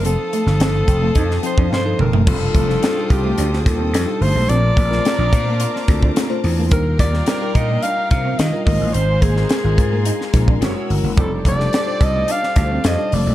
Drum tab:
CC |----------------|x---------------|----------------|----------------|
HH |x-x-x-x-x-x-----|--x-x-x-x-x-x-o-|x-x-x-x-x-x-x-o-|x-x-x-x-x-x-x-o-|
SD |---oo----o--o---|---oo----oo-o---|---oo----oo-o---|---oo-------o---|
T2 |--------------o-|----------------|----------------|----------------|
FT |---------------o|----------------|----------------|----------------|
BD |------o-o--o----|o-o---o---o-----|--o---o---oo----|o-o---o---o---o-|

CC |----------------|----------------|
HH |x-x-x-x-x-x-x-o-|x-x-x-x-x-x-x-o-|
SD |---oo----oo-o---|---oo----oo-o---|
T2 |----------------|----------------|
FT |----------------|----------------|
BD |--o---o---oo----|o-o---o---o-----|